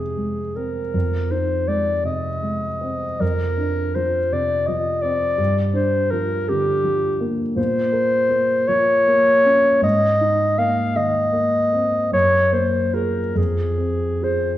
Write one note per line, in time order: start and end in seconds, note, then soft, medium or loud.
0.00 0.90 F2 soft
0.00 0.40 C3 soft
0.00 0.17 G#3 soft
0.00 0.96 D#4 soft
0.00 0.57 G#4 soft
0.17 0.79 G#3 soft
0.56 0.94 C4 soft
0.56 1.33 A#4 soft
0.94 3.18 F2 soft
1.31 1.91 D#4 soft
1.31 1.69 C5 medium
1.67 2.29 G#3 soft
1.67 2.04 D5 medium
2.03 2.67 C3 soft
2.03 3.22 D#5 medium
2.42 3.05 G#3 soft
2.82 3.21 C4 soft
3.21 5.34 F2 soft
3.21 3.97 A#4 medium
3.58 4.18 D4 soft
3.96 4.53 F3 soft
3.96 4.34 C5 medium
4.32 4.89 C3 soft
4.32 4.68 D5 medium
4.67 5.25 F3 soft
4.67 5.03 D#5 medium
5.01 5.39 C4 soft
5.01 5.57 D5 medium
5.38 7.53 G2 soft
5.74 6.34 D4 soft
5.74 6.12 C5 medium
6.11 6.71 F3 soft
6.11 6.50 A#4 medium
6.48 7.07 D3 soft
6.48 7.31 G4 medium
6.84 7.42 F3 soft
7.21 7.57 A#3 soft
7.56 9.79 A#2 soft
7.56 8.69 C5 medium
7.92 8.53 A#4 soft
8.29 8.92 A#3 soft
8.68 9.30 F3 soft
8.68 9.83 C#5 medium
9.07 9.68 A#3 soft
9.45 9.83 C#4 soft
9.81 12.08 G#2 soft
9.81 10.60 D#5 medium
10.21 10.82 D#4 soft
10.58 11.19 A#3 soft
10.58 10.98 F5 medium
10.96 11.57 D#3 soft
10.96 12.12 D#5 medium
11.32 11.96 A#3 soft
11.73 12.12 C4 soft
12.12 13.33 F#2 soft
12.12 12.54 C#5 medium
12.52 13.20 A#3 soft
12.52 12.96 C5 medium
12.93 13.32 F4 soft
12.93 13.32 G#4 soft
12.93 13.39 A#4 medium
13.35 14.58 F2 soft
13.35 14.25 G#4 medium
13.78 14.50 C4 soft
14.21 14.58 F4 soft
14.21 14.58 G#4 soft
14.21 14.56 C5 medium